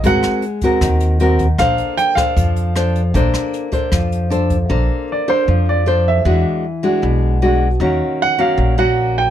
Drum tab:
HH |xxxxxxxx|xxxxxxxx|xxxxxxxx|--------|
SD |-r--r---|r--r--r-|-r--r---|--------|
BD |o--oo--o|o--oo---|o--oo--o|--------|

HH |--------|--------|
SD |--------|--------|
BD |--------|--------|